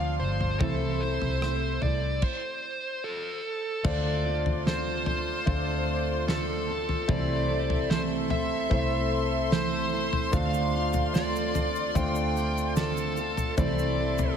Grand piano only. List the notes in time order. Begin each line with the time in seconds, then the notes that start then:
Already playing: F3 D4 C5
0.60 C3 A3 E4 C5
3.84 D3 A3 D4 F4 C5
5.46 A3 D4 F4 C5
7.08 C3 A3 C4 E4 C5
8.70 A3 C4 E4 C5
10.31 D3 A3 D4 F4 C5
11.95 A3 D4 F4 C5
13.57 C3 A3 C4 E4 C5